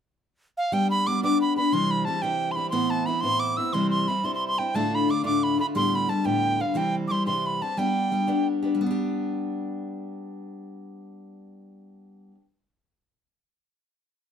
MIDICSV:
0, 0, Header, 1, 3, 480
1, 0, Start_track
1, 0, Tempo, 335383
1, 1036, Time_signature, 6, 3, 24, 8
1, 10155, Tempo, 340522
1, 20336, End_track
2, 0, Start_track
2, 0, Title_t, "Tin whistle"
2, 0, Program_c, 0, 75
2, 821, Note_on_c, 0, 77, 80
2, 1047, Note_on_c, 0, 79, 88
2, 1069, Note_off_c, 0, 77, 0
2, 1284, Note_off_c, 0, 79, 0
2, 1293, Note_on_c, 0, 83, 87
2, 1527, Note_on_c, 0, 86, 78
2, 1549, Note_off_c, 0, 83, 0
2, 1755, Note_off_c, 0, 86, 0
2, 1765, Note_on_c, 0, 86, 90
2, 2007, Note_off_c, 0, 86, 0
2, 2020, Note_on_c, 0, 83, 76
2, 2231, Note_off_c, 0, 83, 0
2, 2241, Note_on_c, 0, 83, 86
2, 2474, Note_on_c, 0, 84, 98
2, 2495, Note_off_c, 0, 83, 0
2, 2727, Note_on_c, 0, 83, 94
2, 2748, Note_off_c, 0, 84, 0
2, 2930, Note_on_c, 0, 81, 81
2, 2952, Note_off_c, 0, 83, 0
2, 3174, Note_on_c, 0, 79, 91
2, 3195, Note_off_c, 0, 81, 0
2, 3597, Note_on_c, 0, 84, 54
2, 3619, Note_off_c, 0, 79, 0
2, 3658, Note_on_c, 0, 83, 79
2, 3679, Note_off_c, 0, 84, 0
2, 3854, Note_off_c, 0, 83, 0
2, 3863, Note_on_c, 0, 84, 99
2, 4151, Note_on_c, 0, 81, 93
2, 4173, Note_off_c, 0, 84, 0
2, 4376, Note_on_c, 0, 83, 76
2, 4398, Note_off_c, 0, 81, 0
2, 4589, Note_on_c, 0, 84, 102
2, 4611, Note_off_c, 0, 83, 0
2, 4859, Note_on_c, 0, 86, 92
2, 4881, Note_off_c, 0, 84, 0
2, 5106, Note_on_c, 0, 88, 82
2, 5128, Note_off_c, 0, 86, 0
2, 5337, Note_on_c, 0, 84, 84
2, 5358, Note_off_c, 0, 88, 0
2, 5573, Note_off_c, 0, 84, 0
2, 5582, Note_on_c, 0, 84, 89
2, 5835, Note_on_c, 0, 83, 80
2, 5857, Note_off_c, 0, 84, 0
2, 6081, Note_on_c, 0, 84, 94
2, 6103, Note_off_c, 0, 83, 0
2, 6209, Note_off_c, 0, 84, 0
2, 6217, Note_on_c, 0, 84, 68
2, 6393, Note_off_c, 0, 84, 0
2, 6404, Note_on_c, 0, 84, 88
2, 6560, Note_on_c, 0, 79, 77
2, 6581, Note_off_c, 0, 84, 0
2, 6800, Note_on_c, 0, 81, 99
2, 6822, Note_off_c, 0, 79, 0
2, 7080, Note_on_c, 0, 83, 85
2, 7101, Note_off_c, 0, 81, 0
2, 7304, Note_on_c, 0, 86, 75
2, 7325, Note_off_c, 0, 83, 0
2, 7507, Note_off_c, 0, 86, 0
2, 7515, Note_on_c, 0, 86, 94
2, 7774, Note_on_c, 0, 83, 77
2, 7796, Note_off_c, 0, 86, 0
2, 8000, Note_off_c, 0, 83, 0
2, 8016, Note_on_c, 0, 83, 85
2, 8102, Note_off_c, 0, 83, 0
2, 8245, Note_on_c, 0, 84, 98
2, 8515, Note_on_c, 0, 83, 83
2, 8537, Note_off_c, 0, 84, 0
2, 8717, Note_on_c, 0, 81, 69
2, 8739, Note_off_c, 0, 83, 0
2, 8951, Note_on_c, 0, 79, 77
2, 8973, Note_off_c, 0, 81, 0
2, 9458, Note_on_c, 0, 77, 69
2, 9479, Note_off_c, 0, 79, 0
2, 9686, Note_on_c, 0, 79, 77
2, 9707, Note_off_c, 0, 77, 0
2, 9947, Note_off_c, 0, 79, 0
2, 10126, Note_on_c, 0, 86, 63
2, 10179, Note_on_c, 0, 84, 79
2, 10200, Note_off_c, 0, 86, 0
2, 10383, Note_off_c, 0, 84, 0
2, 10391, Note_on_c, 0, 84, 80
2, 10668, Note_on_c, 0, 83, 73
2, 10689, Note_off_c, 0, 84, 0
2, 10892, Note_on_c, 0, 81, 76
2, 10914, Note_off_c, 0, 83, 0
2, 11122, Note_on_c, 0, 79, 76
2, 11143, Note_off_c, 0, 81, 0
2, 12099, Note_off_c, 0, 79, 0
2, 20336, End_track
3, 0, Start_track
3, 0, Title_t, "Steel-string acoustic guitar"
3, 0, Program_c, 1, 25
3, 1031, Note_on_c, 1, 55, 63
3, 1035, Note_on_c, 1, 59, 65
3, 1043, Note_on_c, 1, 62, 68
3, 1049, Note_on_c, 1, 67, 74
3, 1521, Note_off_c, 1, 55, 0
3, 1525, Note_off_c, 1, 59, 0
3, 1532, Note_off_c, 1, 62, 0
3, 1535, Note_off_c, 1, 67, 0
3, 1538, Note_on_c, 1, 55, 52
3, 1542, Note_on_c, 1, 59, 58
3, 1554, Note_on_c, 1, 62, 49
3, 1563, Note_on_c, 1, 67, 52
3, 1744, Note_off_c, 1, 67, 0
3, 1747, Note_off_c, 1, 62, 0
3, 1753, Note_off_c, 1, 59, 0
3, 1757, Note_off_c, 1, 55, 0
3, 1761, Note_on_c, 1, 67, 47
3, 1764, Note_on_c, 1, 62, 53
3, 1770, Note_on_c, 1, 59, 48
3, 1774, Note_on_c, 1, 55, 50
3, 2218, Note_off_c, 1, 67, 0
3, 2235, Note_on_c, 1, 67, 42
3, 2236, Note_off_c, 1, 62, 0
3, 2245, Note_off_c, 1, 59, 0
3, 2254, Note_on_c, 1, 62, 45
3, 2257, Note_off_c, 1, 55, 0
3, 2262, Note_on_c, 1, 59, 34
3, 2466, Note_on_c, 1, 48, 74
3, 2468, Note_off_c, 1, 67, 0
3, 2473, Note_off_c, 1, 59, 0
3, 2475, Note_on_c, 1, 52, 68
3, 2477, Note_off_c, 1, 62, 0
3, 2479, Note_on_c, 1, 55, 70
3, 2483, Note_on_c, 1, 67, 64
3, 2485, Note_on_c, 1, 60, 75
3, 2947, Note_off_c, 1, 55, 0
3, 2953, Note_off_c, 1, 52, 0
3, 2959, Note_on_c, 1, 52, 45
3, 2961, Note_off_c, 1, 48, 0
3, 2964, Note_on_c, 1, 55, 48
3, 2965, Note_off_c, 1, 67, 0
3, 2971, Note_off_c, 1, 60, 0
3, 2977, Note_on_c, 1, 60, 59
3, 2982, Note_on_c, 1, 67, 53
3, 3170, Note_off_c, 1, 67, 0
3, 3179, Note_off_c, 1, 60, 0
3, 3181, Note_off_c, 1, 55, 0
3, 3184, Note_off_c, 1, 52, 0
3, 3187, Note_on_c, 1, 67, 64
3, 3196, Note_on_c, 1, 60, 52
3, 3198, Note_on_c, 1, 55, 49
3, 3202, Note_on_c, 1, 52, 55
3, 3211, Note_on_c, 1, 48, 48
3, 3659, Note_off_c, 1, 67, 0
3, 3677, Note_on_c, 1, 67, 44
3, 3681, Note_off_c, 1, 60, 0
3, 3686, Note_off_c, 1, 55, 0
3, 3686, Note_on_c, 1, 60, 40
3, 3692, Note_off_c, 1, 48, 0
3, 3701, Note_on_c, 1, 55, 39
3, 3892, Note_off_c, 1, 52, 0
3, 3894, Note_on_c, 1, 45, 66
3, 3895, Note_off_c, 1, 60, 0
3, 3896, Note_off_c, 1, 55, 0
3, 3898, Note_on_c, 1, 52, 80
3, 3901, Note_on_c, 1, 59, 78
3, 3906, Note_off_c, 1, 67, 0
3, 3912, Note_on_c, 1, 60, 67
3, 3922, Note_on_c, 1, 64, 72
3, 4370, Note_off_c, 1, 52, 0
3, 4382, Note_off_c, 1, 59, 0
3, 4387, Note_on_c, 1, 52, 43
3, 4393, Note_off_c, 1, 45, 0
3, 4395, Note_off_c, 1, 60, 0
3, 4399, Note_on_c, 1, 59, 54
3, 4401, Note_off_c, 1, 64, 0
3, 4412, Note_on_c, 1, 60, 56
3, 4418, Note_on_c, 1, 64, 46
3, 4599, Note_off_c, 1, 64, 0
3, 4612, Note_off_c, 1, 59, 0
3, 4614, Note_off_c, 1, 60, 0
3, 4616, Note_on_c, 1, 64, 57
3, 4620, Note_off_c, 1, 52, 0
3, 4629, Note_on_c, 1, 59, 55
3, 4631, Note_on_c, 1, 60, 53
3, 4635, Note_on_c, 1, 52, 53
3, 4642, Note_on_c, 1, 45, 47
3, 5100, Note_off_c, 1, 64, 0
3, 5108, Note_off_c, 1, 60, 0
3, 5117, Note_on_c, 1, 64, 47
3, 5120, Note_off_c, 1, 59, 0
3, 5123, Note_off_c, 1, 52, 0
3, 5125, Note_on_c, 1, 60, 40
3, 5126, Note_off_c, 1, 45, 0
3, 5140, Note_on_c, 1, 59, 32
3, 5339, Note_on_c, 1, 48, 65
3, 5342, Note_off_c, 1, 60, 0
3, 5344, Note_off_c, 1, 64, 0
3, 5348, Note_on_c, 1, 52, 68
3, 5350, Note_off_c, 1, 59, 0
3, 5356, Note_on_c, 1, 55, 79
3, 5359, Note_on_c, 1, 60, 75
3, 5361, Note_on_c, 1, 64, 70
3, 5820, Note_off_c, 1, 52, 0
3, 5834, Note_off_c, 1, 48, 0
3, 5837, Note_off_c, 1, 55, 0
3, 5837, Note_on_c, 1, 52, 47
3, 5844, Note_off_c, 1, 60, 0
3, 5845, Note_off_c, 1, 64, 0
3, 5854, Note_on_c, 1, 55, 50
3, 5860, Note_on_c, 1, 60, 45
3, 5870, Note_on_c, 1, 64, 48
3, 6045, Note_off_c, 1, 64, 0
3, 6060, Note_off_c, 1, 55, 0
3, 6061, Note_off_c, 1, 60, 0
3, 6062, Note_on_c, 1, 64, 54
3, 6064, Note_off_c, 1, 52, 0
3, 6077, Note_on_c, 1, 55, 49
3, 6078, Note_on_c, 1, 60, 47
3, 6082, Note_on_c, 1, 52, 43
3, 6085, Note_on_c, 1, 48, 45
3, 6555, Note_off_c, 1, 64, 0
3, 6563, Note_off_c, 1, 55, 0
3, 6563, Note_off_c, 1, 60, 0
3, 6565, Note_off_c, 1, 52, 0
3, 6567, Note_off_c, 1, 48, 0
3, 6572, Note_on_c, 1, 64, 44
3, 6585, Note_on_c, 1, 60, 31
3, 6602, Note_on_c, 1, 55, 32
3, 6788, Note_on_c, 1, 38, 61
3, 6791, Note_off_c, 1, 64, 0
3, 6792, Note_on_c, 1, 45, 67
3, 6797, Note_off_c, 1, 60, 0
3, 6799, Note_off_c, 1, 55, 0
3, 6803, Note_on_c, 1, 50, 67
3, 6805, Note_on_c, 1, 57, 70
3, 6805, Note_on_c, 1, 62, 76
3, 6813, Note_on_c, 1, 65, 79
3, 7252, Note_off_c, 1, 50, 0
3, 7264, Note_off_c, 1, 57, 0
3, 7266, Note_off_c, 1, 62, 0
3, 7269, Note_on_c, 1, 50, 46
3, 7276, Note_off_c, 1, 65, 0
3, 7279, Note_off_c, 1, 38, 0
3, 7281, Note_off_c, 1, 45, 0
3, 7281, Note_on_c, 1, 57, 60
3, 7283, Note_on_c, 1, 62, 56
3, 7293, Note_on_c, 1, 65, 56
3, 7474, Note_off_c, 1, 65, 0
3, 7478, Note_off_c, 1, 62, 0
3, 7483, Note_off_c, 1, 50, 0
3, 7485, Note_off_c, 1, 57, 0
3, 7491, Note_on_c, 1, 65, 53
3, 7496, Note_on_c, 1, 62, 50
3, 7500, Note_on_c, 1, 50, 42
3, 7502, Note_on_c, 1, 57, 56
3, 7503, Note_on_c, 1, 45, 50
3, 7512, Note_on_c, 1, 38, 52
3, 7958, Note_off_c, 1, 65, 0
3, 7974, Note_off_c, 1, 62, 0
3, 7976, Note_off_c, 1, 57, 0
3, 7976, Note_on_c, 1, 65, 45
3, 7990, Note_off_c, 1, 50, 0
3, 7991, Note_on_c, 1, 62, 43
3, 7993, Note_on_c, 1, 57, 43
3, 7997, Note_off_c, 1, 45, 0
3, 8002, Note_off_c, 1, 38, 0
3, 8007, Note_on_c, 1, 50, 35
3, 8214, Note_off_c, 1, 50, 0
3, 8214, Note_off_c, 1, 65, 0
3, 8222, Note_off_c, 1, 62, 0
3, 8223, Note_off_c, 1, 57, 0
3, 8225, Note_on_c, 1, 38, 56
3, 8228, Note_on_c, 1, 45, 64
3, 8231, Note_on_c, 1, 50, 67
3, 8234, Note_on_c, 1, 55, 66
3, 8235, Note_on_c, 1, 59, 72
3, 8244, Note_on_c, 1, 67, 71
3, 8688, Note_off_c, 1, 50, 0
3, 8705, Note_on_c, 1, 50, 51
3, 8712, Note_off_c, 1, 55, 0
3, 8714, Note_off_c, 1, 59, 0
3, 8717, Note_on_c, 1, 55, 53
3, 8720, Note_off_c, 1, 38, 0
3, 8722, Note_off_c, 1, 45, 0
3, 8731, Note_on_c, 1, 59, 46
3, 8736, Note_off_c, 1, 67, 0
3, 8741, Note_on_c, 1, 67, 57
3, 8916, Note_off_c, 1, 67, 0
3, 8922, Note_off_c, 1, 59, 0
3, 8924, Note_off_c, 1, 55, 0
3, 8933, Note_off_c, 1, 50, 0
3, 8933, Note_on_c, 1, 67, 65
3, 8939, Note_on_c, 1, 59, 58
3, 8941, Note_on_c, 1, 55, 50
3, 8950, Note_on_c, 1, 50, 47
3, 8954, Note_on_c, 1, 38, 46
3, 8954, Note_on_c, 1, 45, 47
3, 9422, Note_off_c, 1, 59, 0
3, 9425, Note_off_c, 1, 67, 0
3, 9431, Note_on_c, 1, 67, 41
3, 9439, Note_on_c, 1, 59, 42
3, 9440, Note_off_c, 1, 55, 0
3, 9445, Note_off_c, 1, 50, 0
3, 9446, Note_on_c, 1, 55, 41
3, 9447, Note_off_c, 1, 38, 0
3, 9447, Note_off_c, 1, 45, 0
3, 9461, Note_on_c, 1, 50, 40
3, 9644, Note_off_c, 1, 55, 0
3, 9646, Note_on_c, 1, 48, 58
3, 9653, Note_off_c, 1, 50, 0
3, 9655, Note_off_c, 1, 67, 0
3, 9659, Note_on_c, 1, 52, 67
3, 9660, Note_off_c, 1, 59, 0
3, 9661, Note_on_c, 1, 55, 64
3, 9666, Note_on_c, 1, 60, 71
3, 9672, Note_on_c, 1, 67, 84
3, 10142, Note_off_c, 1, 52, 0
3, 10156, Note_off_c, 1, 48, 0
3, 10159, Note_off_c, 1, 60, 0
3, 10159, Note_on_c, 1, 52, 46
3, 10166, Note_off_c, 1, 55, 0
3, 10172, Note_on_c, 1, 55, 48
3, 10175, Note_off_c, 1, 67, 0
3, 10176, Note_on_c, 1, 60, 57
3, 10180, Note_on_c, 1, 67, 58
3, 10372, Note_off_c, 1, 67, 0
3, 10380, Note_off_c, 1, 60, 0
3, 10383, Note_off_c, 1, 55, 0
3, 10389, Note_off_c, 1, 52, 0
3, 10389, Note_on_c, 1, 67, 53
3, 10397, Note_on_c, 1, 60, 53
3, 10400, Note_on_c, 1, 55, 53
3, 10408, Note_on_c, 1, 52, 47
3, 10411, Note_on_c, 1, 48, 42
3, 10885, Note_off_c, 1, 67, 0
3, 10886, Note_off_c, 1, 60, 0
3, 10890, Note_on_c, 1, 67, 52
3, 10891, Note_off_c, 1, 52, 0
3, 10893, Note_off_c, 1, 48, 0
3, 10906, Note_on_c, 1, 60, 39
3, 10912, Note_off_c, 1, 55, 0
3, 10917, Note_on_c, 1, 55, 35
3, 11091, Note_off_c, 1, 55, 0
3, 11108, Note_on_c, 1, 55, 69
3, 11113, Note_off_c, 1, 67, 0
3, 11115, Note_on_c, 1, 59, 65
3, 11118, Note_off_c, 1, 60, 0
3, 11124, Note_on_c, 1, 62, 67
3, 11131, Note_on_c, 1, 67, 74
3, 11585, Note_off_c, 1, 55, 0
3, 11590, Note_on_c, 1, 55, 44
3, 11594, Note_off_c, 1, 59, 0
3, 11596, Note_off_c, 1, 62, 0
3, 11600, Note_on_c, 1, 59, 52
3, 11601, Note_on_c, 1, 62, 50
3, 11612, Note_off_c, 1, 67, 0
3, 11617, Note_on_c, 1, 67, 61
3, 11797, Note_off_c, 1, 67, 0
3, 11806, Note_off_c, 1, 59, 0
3, 11806, Note_off_c, 1, 62, 0
3, 11814, Note_on_c, 1, 67, 61
3, 11816, Note_off_c, 1, 55, 0
3, 11823, Note_on_c, 1, 59, 55
3, 11823, Note_on_c, 1, 62, 59
3, 11832, Note_on_c, 1, 55, 55
3, 12305, Note_off_c, 1, 67, 0
3, 12310, Note_on_c, 1, 67, 49
3, 12321, Note_off_c, 1, 62, 0
3, 12327, Note_on_c, 1, 62, 39
3, 12339, Note_off_c, 1, 59, 0
3, 12345, Note_on_c, 1, 59, 34
3, 12475, Note_off_c, 1, 55, 0
3, 12481, Note_on_c, 1, 55, 64
3, 12542, Note_off_c, 1, 67, 0
3, 12550, Note_off_c, 1, 62, 0
3, 12553, Note_off_c, 1, 59, 0
3, 12570, Note_on_c, 1, 59, 74
3, 12647, Note_on_c, 1, 62, 73
3, 12708, Note_on_c, 1, 67, 81
3, 17509, Note_off_c, 1, 55, 0
3, 17554, Note_off_c, 1, 59, 0
3, 17592, Note_off_c, 1, 62, 0
3, 17642, Note_off_c, 1, 67, 0
3, 20336, End_track
0, 0, End_of_file